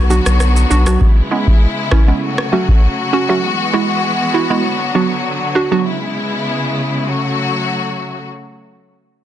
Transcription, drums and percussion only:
0.10 shaker soft
0.26 cross-stick medium
0.26 shaker medium
0.40 cross-stick medium
0.40 shaker medium
0.56 shaker medium
0.71 shaker soft
0.87 cross-stick medium
0.87 shaker medium
1.01 kick loud
1.47 kick loud
1.92 kick loud
1.92 cross-stick medium
2.38 cross-stick medium
2.68 kick medium

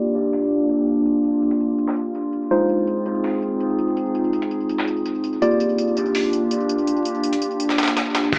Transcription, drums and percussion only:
0.15 tambourine medium
0.33 open hi-hat medium
0.51 tambourine medium
0.69 tambourine medium
0.87 tambourine medium
1.06 tambourine medium
1.24 tambourine medium
1.42 tambourine medium
1.51 closed hi-hat soft
1.60 tambourine medium
1.78 tambourine medium
1.88 snare soft
1.97 tambourine medium
2.15 tambourine medium
2.33 tambourine medium
2.51 tambourine medium
2.69 tambourine medium
2.87 tambourine medium
3.06 tambourine medium
3.24 open hi-hat medium
3.42 tambourine medium
3.60 tambourine medium
3.79 tambourine medium
3.97 tambourine medium
4.15 tambourine medium
4.33 tambourine medium
4.42 closed hi-hat soft
4.51 tambourine medium
4.69 tambourine medium
4.78 snare soft
4.88 tambourine medium
5.06 tambourine medium
5.24 tambourine medium
5.42 tambourine medium
5.60 tambourine medium
5.78 tambourine medium
5.97 tambourine medium
6.15 open hi-hat medium
6.33 tambourine medium
6.51 tambourine medium
6.69 tambourine medium
6.87 tambourine medium
7.05 tambourine medium
7.24 tambourine medium
7.33 closed hi-hat soft
7.42 tambourine medium
7.60 tambourine medium
7.69 snare soft
7.78 snare medium
7.78 tambourine medium
7.83 snare medium
7.83 tambourine medium
7.87 snare loud
7.87 tambourine medium
7.97 snare loud
7.97 tambourine medium
8.15 snare loud
8.15 tambourine medium
8.32 kick loud
8.32 closed hi-hat loud
8.32 crash medium

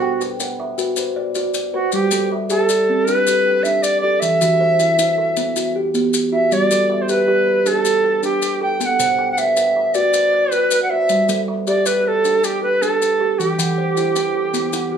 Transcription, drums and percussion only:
0.21 maracas medium
0.40 maracas medium
0.78 maracas medium
0.96 maracas medium
1.35 maracas medium
1.54 maracas medium
1.92 maracas medium
2.11 maracas medium
2.50 maracas medium
2.69 maracas medium
3.08 maracas medium
3.27 maracas medium
3.65 maracas medium
3.84 maracas medium
4.22 maracas medium
4.41 maracas medium
4.80 maracas medium
4.99 maracas medium
5.37 maracas medium
5.56 maracas medium
5.95 maracas medium
6.14 maracas medium
6.52 maracas medium
6.71 maracas medium
7.09 maracas medium
7.66 maracas medium
7.85 maracas medium
8.23 maracas medium
8.42 maracas medium
8.81 maracas medium
9.00 maracas medium
9.38 maracas medium
9.57 maracas medium
9.94 maracas medium
10.14 maracas medium
10.52 maracas medium
10.71 maracas medium
11.09 maracas medium
11.29 maracas medium
11.67 maracas medium
11.86 maracas medium
12.25 maracas medium
12.44 maracas medium
12.83 maracas medium
13.02 maracas medium
13.40 maracas medium
13.59 maracas medium
13.97 maracas medium
14.16 maracas medium
14.54 maracas medium
14.73 maracas medium

